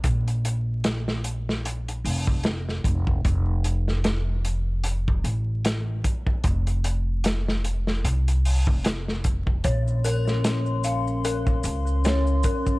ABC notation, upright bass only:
X:1
M:4/4
L:1/16
Q:"Swing 16ths" 1/4=75
K:Bbm
V:1 name="Upright bass" clef=bass
B,,,8- B,,,2 F,,,4 F,,,2 | F,,,8- F,,,2 =A,,,4 z2 | F,,,8 C,,3 F,,,4- F,,, | B,,,8- B,,,2 D,,4 z2 |]